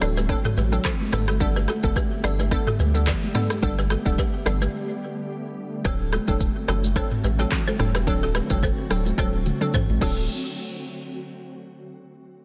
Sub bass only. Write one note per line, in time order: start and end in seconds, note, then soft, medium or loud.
0.02 0.35 D1 medium
0.57 0.79 A1 loud
1.13 1.68 G1 loud
1.84 1.93 F#1 loud
2.24 2.57 G1 medium
2.79 3.13 D2 loud
3.63 3.96 G1 loud
4.06 4.16 D1 medium
4.46 4.68 G1 medium
5.85 6.18 D1 loud
6.28 6.50 E1 medium
6.68 7.02 F#1 medium
7.24 7.45 A1 loud
7.79 8.09 E1 medium
8.07 8.41 D1 loud
8.50 8.72 F#1 medium
8.91 9.12 D1 medium
9.18 9.52 D1 loud
9.89 9.99 A1 medium
10.02 10.27 D1 loud